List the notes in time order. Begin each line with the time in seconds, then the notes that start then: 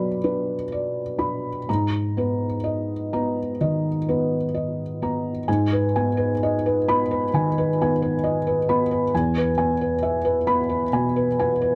Already playing: F#3 D4 B4 D5 B5
0.24 D4 B4
0.72 D5
1.19 D4 B5
1.69 G#2 A#5
2.17 B3 B4
2.64 D#5
3.13 B3 A#5
3.61 D#3 D#5
4.09 B3 B4
4.54 D#5
5.02 B3 A#5
5.48 G#2 G#5
5.73 B4
5.96 B3 G#5
6.17 B4
6.43 D#5
6.66 B4
6.88 B3 B5
7.11 B4
7.34 D#3 G#5
7.58 B4
7.81 B3 G#5
8.02 B4
8.24 D#5
8.47 B4
8.69 B3 B5
8.91 B4
9.14 E2 G#5
9.37 B4
9.58 B3 G#5
9.81 B4
10.03 E5
10.25 B4
10.47 B3 B5
10.69 B4
10.93 B2 G#5
11.16 B4
11.39 B3 G#5
11.62 B4